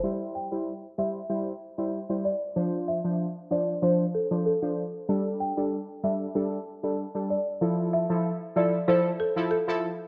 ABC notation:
X:1
M:4/4
L:1/16
Q:1/4=95
K:C
V:1 name="Marimba"
z2 g z3 e z6 z d z | z2 e z3 d z c z A z A3 z | z2 g z3 e z6 z d z | z2 e z3 d z c z A z A3 z |]
V:2 name="Synth stab"
[G,Ec]3 [G,Ec] z2 [G,Ec] z [G,Ec] z2 [G,Ec] z [G,Ec] z2 | [F,Dc]3 [F,Dc] z2 [F,Dc] z [F,Dc] z2 [F,Dc] z [F,Dc] z2 | [G,DA]3 [G,DA] z2 [G,DA] z [G,DA] z2 [G,DA] z [G,DA] z2 | [F,EA]3 [F,EA] z2 [F,EA] z [F,EA] z2 [F,EA] z [F,EA] z2 |]